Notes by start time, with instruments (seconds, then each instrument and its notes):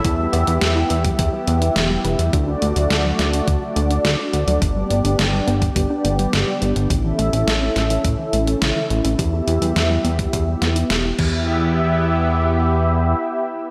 Already playing: analog synth pad E4 E5
0.04 analog synth bass E2, synth arpeggio sound E3, analog synth pad B3 G4, kick, closed hi-hat
0.19 synth arpeggio sound G3
0.33 analog synth bass E2, synth arpeggio sound B3, closed hi-hat
0.47 analog synth bass E2, synth arpeggio sound E4, closed hi-hat
0.61 analog synth bass E2, synth arpeggio sound G4, snare, closed hi-hat
0.76 synth arpeggio sound E4
0.90 analog synth bass E2, synth arpeggio sound B3, closed hi-hat
1.04 synth arpeggio sound G3, kick, closed hi-hat
1.18 analog synth bass E2, synth arpeggio sound E3, kick, closed hi-hat
1.33 synth arpeggio sound G3
1.47 analog synth bass E2, synth arpeggio sound B3, closed hi-hat
1.61 synth arpeggio sound E4, closed hi-hat
1.76 analog synth bass E1, synth arpeggio sound E3, snare, closed hi-hat
1.90 synth arpeggio sound G3
2.04 analog synth bass E1, synth arpeggio sound B3, closed hi-hat
2.19 analog synth bass E2, synth arpeggio sound E4, closed hi-hat
2.33 analog synth bass D2, analog synth pad A3 D4 F#4 D5, synth arpeggio sound F#4, kick, closed hi-hat
2.47 synth arpeggio sound D4
2.62 analog synth bass D2, synth arpeggio sound A3, closed hi-hat
2.76 analog synth bass D2, synth arpeggio sound F#3, closed hi-hat
2.90 analog synth bass D2, synth arpeggio sound D3, snare, closed hi-hat
3.05 synth arpeggio sound F#3
3.19 analog synth bass D2, synth arpeggio sound A3, snare, closed hi-hat
3.33 synth arpeggio sound D4, closed hi-hat
3.47 analog synth bass D2, synth arpeggio sound D3, kick, closed hi-hat
3.62 synth arpeggio sound F#3
3.76 analog synth bass D2, synth arpeggio sound A3, closed hi-hat
3.90 synth arpeggio sound D4, closed hi-hat
4.05 analog synth bass D2, synth arpeggio sound F#4, snare, closed hi-hat
4.19 synth arpeggio sound D4
4.33 analog synth bass D2, synth arpeggio sound A3, closed hi-hat
4.47 analog synth bass D2, synth arpeggio sound F#3, closed hi-hat
4.62 analog synth bass G1, synth arpeggio sound D3, analog synth pad B3 G4, kick, closed hi-hat
4.76 synth arpeggio sound G3
4.90 analog synth bass G1, synth arpeggio sound B3, closed hi-hat
5.05 analog synth bass G1, synth arpeggio sound D4, closed hi-hat
5.19 analog synth bass G1, synth arpeggio sound D3, snare, closed hi-hat
5.33 synth arpeggio sound G3
5.47 analog synth bass G1, synth arpeggio sound B3, closed hi-hat
5.62 synth arpeggio sound D4, kick, closed hi-hat
5.76 analog synth bass G1, synth arpeggio sound G4, kick, closed hi-hat
5.90 synth arpeggio sound D4
6.05 analog synth bass G1, synth arpeggio sound B3, closed hi-hat
6.19 synth arpeggio sound G3, closed hi-hat
6.33 analog synth bass G1, synth arpeggio sound D3, snare, closed hi-hat
6.47 synth arpeggio sound G3
6.61 analog synth bass G1, synth arpeggio sound B3, closed hi-hat
6.76 analog synth bass G1, synth arpeggio sound D4, closed hi-hat
6.90 analog synth bass A1, synth arpeggio sound C#3, analog synth pad C#4 E4 A4 E5, kick, closed hi-hat
7.04 synth arpeggio sound E3
7.19 analog synth bass A1, synth arpeggio sound A3, closed hi-hat
7.33 analog synth bass A1, synth arpeggio sound C#4, closed hi-hat
7.47 analog synth bass A1, synth arpeggio sound E4, snare, closed hi-hat
7.62 synth arpeggio sound C#4
7.76 analog synth bass A1, synth arpeggio sound A3, snare, closed hi-hat
7.90 synth arpeggio sound E3, closed hi-hat
8.05 analog synth bass A1, synth arpeggio sound C#3, kick, closed hi-hat
8.19 synth arpeggio sound E3
8.33 analog synth bass A1, synth arpeggio sound A3, closed hi-hat
8.47 synth arpeggio sound C#4, closed hi-hat
8.62 analog synth bass A1, synth arpeggio sound C#3, snare, closed hi-hat
8.76 synth arpeggio sound E3
8.90 analog synth bass A1, synth arpeggio sound A3, closed hi-hat
9.05 analog synth bass A1, synth arpeggio sound C#4, closed hi-hat
9.19 analog synth bass E2, analog synth pad B3 G4 E5, synth arpeggio sound G4, kick, closed hi-hat
9.33 synth arpeggio sound E4
9.47 analog synth bass E2, synth arpeggio sound B3, closed hi-hat
9.62 analog synth bass E2, synth arpeggio sound G3, closed hi-hat
9.76 analog synth bass E2, synth arpeggio sound E3, snare, closed hi-hat
9.90 synth arpeggio sound G3
10.04 analog synth bass E2, synth arpeggio sound B3, closed hi-hat
10.19 synth arpeggio sound E4, kick, closed hi-hat
10.33 analog synth bass E2, synth arpeggio sound E3, kick, closed hi-hat
10.47 synth arpeggio sound G3
10.62 analog synth bass E2, synth arpeggio sound B3, snare, closed hi-hat
10.76 synth arpeggio sound E4, closed hi-hat
10.90 analog synth bass E1, synth arpeggio sound G4, snare, closed hi-hat
11.04 synth arpeggio sound E4
11.19 analog synth bass E2, synth arpeggio sound E3, analog synth pad B3 E4 G4 E5, kick, crash